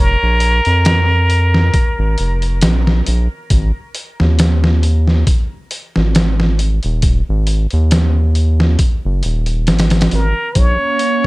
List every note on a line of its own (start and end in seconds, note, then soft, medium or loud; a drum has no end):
0.00 0.16 F1 medium
0.00 2.63 A#4 loud
0.23 0.61 A#1 medium
0.40 closed hi-hat medium
0.65 1.71 F2 medium
0.65 closed hi-hat soft
0.85 snare loud
0.85 closed hi-hat medium
1.30 closed hi-hat medium
1.54 snare medium
1.74 kick loud
1.74 closed hi-hat medium
1.99 2.16 G#1 medium
2.18 2.65 F1 medium
2.18 closed hi-hat medium
2.42 closed hi-hat soft
2.61 3.02 A#1 medium
2.61 snare loud
2.61 closed hi-hat medium
2.87 snare soft
3.06 3.28 A#1 medium
3.06 closed hi-hat medium
3.50 3.72 G#1 medium
3.50 kick loud
3.50 closed hi-hat medium
3.95 closed hi-hat medium
4.20 5.24 D#2 medium
4.20 snare soft
4.39 snare loud
4.39 closed hi-hat medium
4.64 snare medium
4.83 closed hi-hat medium
5.08 snare soft
5.27 kick loud
5.27 closed hi-hat medium
5.71 closed hi-hat medium
5.96 6.80 G#1 medium
5.96 snare soft
6.15 snare loud
6.15 closed hi-hat medium
6.40 snare soft
6.59 closed hi-hat medium
6.83 7.22 D#1 loud
6.83 closed hi-hat soft
7.02 kick loud
7.02 closed hi-hat medium
7.29 7.67 G#1 loud
7.47 closed hi-hat medium
7.71 8.77 D#2 medium
7.71 closed hi-hat soft
7.91 snare loud
7.91 closed hi-hat medium
8.35 closed hi-hat medium
8.60 snare medium
8.79 kick loud
8.79 closed hi-hat medium
9.05 9.23 F#1 medium
9.23 9.71 D#1 medium
9.23 closed hi-hat medium
9.46 closed hi-hat soft
9.67 10.08 G#1 medium
9.67 snare medium
9.67 closed hi-hat medium
9.79 snare medium
9.79 closed hi-hat medium
9.90 snare medium
9.90 closed hi-hat medium
10.01 snare medium
10.01 closed hi-hat medium
10.11 10.34 G#1 medium
10.11 10.60 A#4 medium
10.11 closed hi-hat medium
10.55 10.77 A#1 loud
10.55 11.27 A#3 medium
10.55 11.27 C#4 medium
10.55 11.27 C#5 loud
10.55 kick loud
10.55 closed hi-hat medium
10.99 closed hi-hat medium